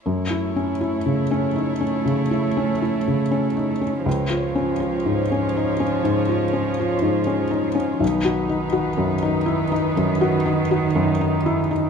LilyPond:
<<
  \new Staff \with { instrumentName = "String section" } { \time 4/4 \key fis \dorian \tempo 4 = 61 <a e' cis''>1 | <gis eis' cis''>1 | <fis dis' b'>1 | }
  \new Staff \with { instrumentName = "Felt piano" } { \time 4/4 \key fis \dorian fis,16 e'16 cis'16 e'16 cis16 cis'16 dis'16 cis'16 cis16 e'16 cis'16 e'16 cis16 cis'16 dis'16 cis'16 | cis,16 eis'16 cis'16 eis'16 gis,16 cis'16 dis'16 cis'16 gis,16 eis'16 cis'16 eis'16 gis,16 cis'16 dis'16 cis'16 | b,,16 fis'16 dis'16 fis'16 fis,16 dis'16 e'16 dis'16 fis,16 fis'16 dis'16 fis'16 fis,16 dis'16 e'16 dis'16 | }
  \new Staff \with { instrumentName = "Cello" } { \clef bass \time 4/4 \key fis \dorian a1 | eis1 | dis1 | }
>>